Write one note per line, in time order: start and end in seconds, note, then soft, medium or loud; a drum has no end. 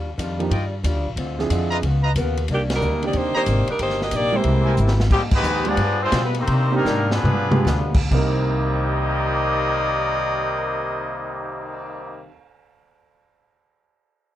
0.00 0.17 D#2 medium
0.18 0.50 F2 medium
0.18 0.41 D#3 medium
0.18 0.41 G3 medium
0.18 0.41 D4 medium
0.18 0.42 F4 medium
0.18 kick soft
0.18 hi-hat pedal medium
0.18 ride medium
0.39 0.50 F3 medium
0.39 0.50 A#3 medium
0.39 0.50 D4 medium
0.39 0.51 D#4 medium
0.39 0.51 G4 medium
0.39 ride soft
0.50 0.83 G2 loud
0.50 0.73 D#3 medium
0.50 0.74 G3 medium
0.50 0.74 D4 medium
0.50 0.66 F4 medium
0.50 0.74 F4 medium
0.50 0.66 D5 medium
0.50 0.66 D#5 medium
0.50 0.66 G5 medium
0.50 kick soft
0.50 ride medium
0.83 0.95 D#2 loud
0.83 1.06 D#3 medium
0.83 1.07 G3 medium
0.83 1.07 D4 medium
0.83 1.07 F4 medium
0.83 kick soft
0.83 hi-hat pedal medium
0.83 ride medium
0.95 1.05 D2 medium
1.06 1.15 A#1 medium
1.16 1.49 D2 medium
1.16 1.40 D3 medium
1.16 1.40 G#3 medium
1.16 1.40 C4 medium
1.16 1.41 F4 medium
1.16 kick soft
1.16 ride medium
1.38 1.81 F3 medium
1.38 1.81 C4 medium
1.38 1.81 D4 medium
1.38 1.81 E4 medium
1.38 1.81 G#4 medium
1.38 snare soft
1.50 1.81 F2 loud
1.50 1.72 D3 medium
1.50 1.73 G#3 medium
1.50 1.73 C4 medium
1.50 1.73 F4 medium
1.50 kick soft
1.50 hi-hat pedal medium
1.50 ride medium
1.71 1.79 F4 medium
1.71 1.79 B4 medium
1.71 1.79 D#5 medium
1.71 1.79 A#5 loud
1.71 ride soft
1.82 2.14 C#2 medium
1.82 2.05 C#3 medium
1.82 2.06 B3 medium
1.82 2.06 F4 medium
1.82 2.06 A#4 medium
1.82 kick soft
1.82 ride medium
2.03 2.11 F4 medium
2.03 2.11 B4 medium
2.03 2.11 D#5 medium
2.03 2.11 A#5 loud
2.16 2.48 D#2 loud
2.16 2.38 C#3 medium
2.16 2.39 B3 medium
2.16 2.39 F4 medium
2.16 2.39 A#4 medium
2.16 kick soft
2.16 hi-hat pedal medium
2.16 ride medium
2.37 ride medium
2.48 2.80 C2 medium
2.48 2.71 C3 medium
2.48 2.72 D#3 medium
2.48 2.72 A#3 medium
2.48 2.72 D4 medium
2.48 kick soft
2.48 ride medium
2.52 2.61 D#3 medium
2.52 2.61 A#3 medium
2.52 2.61 D4 medium
2.52 2.61 G4 medium
2.70 snare medium
2.70 ride medium
2.74 3.03 G3 medium
2.74 3.03 D4 medium
2.74 3.03 D#4 medium
2.74 3.03 A#4 medium
2.80 3.13 D2 medium
2.80 3.04 C3 medium
2.80 3.04 D#3 medium
2.80 3.05 A#3 medium
2.80 3.05 D4 medium
2.80 hi-hat pedal medium
3.02 3.45 D#3 medium
3.02 3.45 A#3 medium
3.02 3.15 A#3 medium
3.02 3.45 C4 medium
3.02 3.45 D4 medium
3.02 3.14 D#4 medium
3.02 3.45 G4 medium
3.02 3.15 G4 medium
3.02 3.15 D5 medium
3.02 ride soft
3.13 3.33 D#2 medium
3.13 3.36 C3 soft
3.13 3.37 D#3 medium
3.13 3.37 A#3 medium
3.13 3.35 A#3 medium
3.13 3.37 D4 medium
3.13 3.35 D#4 medium
3.13 3.35 G4 medium
3.13 3.36 C5 loud
3.13 kick soft
3.13 ride medium
3.34 3.66 A#3 loud
3.34 3.43 D#4 loud
3.34 3.66 D#4 medium
3.34 3.66 G4 medium
3.34 3.43 C5 medium
3.34 3.67 C5 loud
3.34 3.43 D5 medium
3.34 3.43 A#5 loud
3.34 muted upright bass stroke soft
3.46 3.66 G#1 loud
3.46 3.70 C3 medium
3.46 3.70 D#3 medium
3.46 3.70 A#3 medium
3.46 3.70 D4 medium
3.46 kick soft
3.46 hi-hat pedal medium
3.46 ride medium
3.68 3.80 G3 medium
3.68 3.80 D4 medium
3.68 3.80 D#4 medium
3.68 3.80 A#4 medium
3.68 muted upright bass stroke soft
3.68 ride medium
3.79 4.11 G1 medium
3.79 4.02 C3 medium
3.79 4.03 D#3 medium
3.79 4.00 A#3 medium
3.79 4.03 A#3 medium
3.79 4.04 D4 medium
3.79 4.00 D#4 medium
3.79 4.00 G4 medium
3.79 4.01 C5 loud
3.79 kick soft
3.79 ride medium
3.90 snare soft
4.02 4.13 A#3 medium
4.02 4.13 D4 medium
4.02 4.13 G4 medium
4.02 4.13 D#5 medium
4.02 snare soft
4.11 4.44 A#1 medium
4.11 4.35 C3 medium
4.11 4.35 D#3 medium
4.11 4.35 A#3 medium
4.11 4.35 A#3 loud
4.11 4.36 D4 medium
4.11 4.35 D#4 medium
4.11 4.35 G4 loud
4.11 4.35 D5 loud
4.11 kick soft
4.11 hi-hat pedal medium
4.11 ride medium
4.33 5.00 E3 medium
4.33 5.00 G3 medium
4.33 4.75 G#3 medium
4.33 4.76 A#3 medium
4.33 5.01 A#3 medium
4.33 4.76 C4 medium
4.33 5.00 C4 medium
4.33 4.76 E4 medium
4.33 5.01 E4 medium
4.33 4.76 G4 medium
4.33 5.00 G4 medium
4.33 5.00 C5 loud
4.44 4.77 C2 medium
4.44 4.68 C3 soft
4.44 4.68 G#3 medium
4.44 4.68 A#3 soft
4.44 4.69 E4 soft
4.44 kick soft
4.44 ride medium
4.66 4.74 E4 medium
4.66 4.74 A#4 medium
4.66 4.74 C5 medium
4.66 4.74 G#5 medium
4.77 5.10 G#1 loud
4.77 5.00 C3 medium
4.77 5.01 G#3 medium
4.77 5.01 A#3 medium
4.77 5.01 E4 medium
4.77 hi-hat pedal medium
4.88 snare medium
5.00 snare medium
5.11 5.42 G#2 medium
5.11 5.21 C3 medium
5.11 5.22 D#3 medium
5.11 5.34 F3 medium
5.11 5.22 G3 medium
5.11 5.34 G#3 medium
5.11 5.22 G#3 medium
5.11 5.22 C4 medium
5.11 5.34 D#4 medium
5.11 5.22 G4 loud
5.11 5.35 G4 medium
5.11 kick medium
5.11 crash medium
5.31 5.64 D#3 medium
5.31 5.64 G#3 medium
5.31 5.64 B3 medium
5.31 kick medium
5.31 crash medium
5.36 5.65 G#3 loud
5.36 5.65 D#4 medium
5.36 5.65 G4 medium
5.36 5.65 B4 loud
5.42 5.76 D#2 loud
5.42 5.67 F3 medium
5.42 5.67 G#3 medium
5.42 5.68 D#4 medium
5.42 5.68 G4 medium
5.42 hi-hat pedal medium
5.65 6.00 F3 medium
5.65 5.76 G#3 medium
5.65 5.76 B3 medium
5.65 6.00 B3 loud
5.65 6.01 B3 loud
5.65 5.76 D4 medium
5.65 6.00 D4 loud
5.65 5.77 F4 medium
5.65 6.01 F4 loud
5.65 5.77 G4 medium
5.65 6.01 D5 loud
5.65 ride medium
5.69 6.01 G#4 loud
5.77 6.11 G2 loud
5.77 6.01 G3 soft
5.77 6.02 B3 medium
5.77 6.02 F4 medium
5.77 kick soft
5.77 ride medium
5.81 6.03 G#4 medium
6.03 6.26 G#3 loud
6.03 6.25 C4 medium
6.03 6.25 D4 medium
6.03 6.26 F4 loud
6.03 6.26 C5 loud
6.12 6.47 B2 loud
6.12 6.37 G3 medium
6.12 6.37 B3 medium
6.12 6.37 F4 medium
6.12 6.37 G#4 medium
6.12 kick soft
6.12 snare medium
6.12 hi-hat pedal medium
6.12 ride medium
6.25 6.35 B4 medium
6.35 6.73 D#3 loud
6.35 6.73 G3 medium
6.35 6.73 C4 medium
6.35 ride medium
6.40 6.74 A#3 loud
6.40 6.74 D#4 loud
6.40 6.74 G4 medium
6.40 6.74 C5 loud
6.47 6.84 C3 medium
6.47 6.74 C3 medium
6.47 6.74 D#3 medium
6.47 6.74 A#3 medium
6.47 kick soft
6.47 ride medium
6.52 6.75 D4 medium
6.71 7.09 D#3 medium
6.71 7.09 G3 medium
6.71 6.84 A#3 medium
6.71 6.83 C4 medium
6.71 6.84 D4 medium
6.71 6.84 D#4 medium
6.71 6.84 G4 loud
6.76 7.09 G3 medium
6.76 7.09 A#3 medium
6.76 7.09 D4 medium
6.76 7.10 D#4 loud
6.76 7.10 A#4 loud
6.85 7.23 G#2 loud
6.85 7.12 C3 medium
6.85 7.12 D#3 medium
6.85 7.12 A#3 medium
6.85 7.12 D4 medium
6.85 snare medium
6.85 hi-hat pedal medium
7.11 7.91 D3 medium
7.11 7.91 F3 medium
7.11 7.91 B3 medium
7.11 7.92 D4 medium
7.11 7.92 F4 medium
7.11 7.93 G#4 medium
7.11 7.92 B4 medium
7.11 snare medium
7.23 7.64 G2 loud
7.23 7.52 G3 soft
7.23 7.53 B3 medium
7.23 7.54 F4 medium
7.23 mid tom medium
7.28 7.54 G#4 medium
7.51 7.65 G#3 medium
7.51 7.65 B3 medium
7.51 7.65 D4 medium
7.51 7.65 F4 medium
7.51 7.65 G4 medium
7.51 mid tom loud
7.65 8.09 D2 loud
7.65 7.96 G3 medium
7.65 7.96 B3 medium
7.65 7.96 F4 medium
7.65 7.97 G#4 medium
7.65 snare medium
7.65 hi-hat pedal medium
7.94 kick medium
7.94 crash loud
8.07 12.24 C2 loud
8.07 12.24 C3 medium
8.07 12.28 C3 medium
8.07 kick medium
8.07 crash medium
8.11 12.24 C3 loud
8.11 12.29 D#3 medium
8.11 12.24 G3 loud
8.11 12.25 A#3 loud
8.11 12.29 A#3 medium
8.11 12.26 A#3 loud
8.11 12.29 C4 medium
8.11 12.25 D#4 loud
8.11 12.30 D#4 medium
8.11 12.26 G4 loud
8.11 12.31 A#4 medium
8.11 12.25 D5 medium
8.11 12.27 D#5 loud
8.17 12.34 A#3 medium
8.41 cymbal swell soft